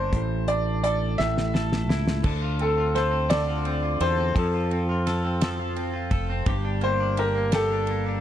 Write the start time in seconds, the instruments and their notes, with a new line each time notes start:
Already playing: fretless electric bass G1, clean electric guitar G2 A#3 D4 A#4, grand piano C5
0.13 fretless electric bass A1, clean electric guitar A2, kick, closed hi-hat
0.48 clean electric guitar D4, grand piano D5, closed hi-hat
0.83 clean electric guitar A4, grand piano D5, cross-stick, closed hi-hat
1.18 fretless electric bass A1, clean electric guitar A2, grand piano E5, snare
1.38 snare
1.54 clean electric guitar A4, snare
1.72 snare
1.89 fretless electric bass C#2, clean electric guitar E4, snare
2.07 snare
2.24 fretless electric bass D2, clean electric guitar D3 A4, kick, crash
2.42 clean electric guitar F4
2.59 clean electric guitar C4, grand piano A4, ride
2.78 clean electric guitar F4
2.95 clean electric guitar A4, grand piano C5, snare, ride
3.11 clean electric guitar C4
3.29 clean electric guitar D3 A4, grand piano D5, snare, ride
3.48 clean electric guitar F4
3.65 clean electric guitar C4, ride
3.83 clean electric guitar F4
4.00 fretless electric bass E2, clean electric guitar A4, grand piano C5, ride
4.18 clean electric guitar C4
4.35 fretless electric bass F2, clean electric guitar F3 A4, grand piano A4, kick, ride
4.54 clean electric guitar F4
4.71 clean electric guitar C4, ride
4.89 clean electric guitar F4
5.07 clean electric guitar A4, snare, ride
5.25 clean electric guitar C4
5.41 clean electric guitar F3 A4, snare, ride
5.59 clean electric guitar F4
5.76 clean electric guitar C4, ride
5.94 clean electric guitar F4
6.11 fretless electric bass F1, clean electric guitar A4, kick, ride
6.30 clean electric guitar C4
6.46 fretless electric bass G1, clean electric guitar G2 G4, kick, ride
6.65 clean electric guitar D4
6.81 clean electric guitar A#3, grand piano C5, ride
7.00 clean electric guitar D4
7.17 clean electric guitar G4, grand piano A#4, ride
7.35 clean electric guitar A#3
7.52 clean electric guitar G2 G4, grand piano A4, snare, ride
7.71 clean electric guitar D4
7.87 clean electric guitar A#3, ride
8.06 clean electric guitar D4